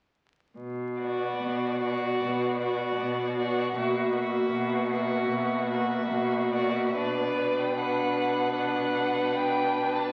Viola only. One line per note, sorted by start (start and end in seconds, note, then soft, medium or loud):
1.00 1.81 B3 soft
1.83 2.60 B3 soft
2.61 3.35 B3 soft
3.37 3.74 B3 soft
3.75 4.12 A#3 soft
4.14 4.88 A#3 soft
4.91 5.67 A#3 soft
5.70 6.52 A#3 soft
6.54 6.95 A#3 soft
6.97 7.73 D4 soft
7.77 8.55 D4 soft
8.56 10.09 D4 soft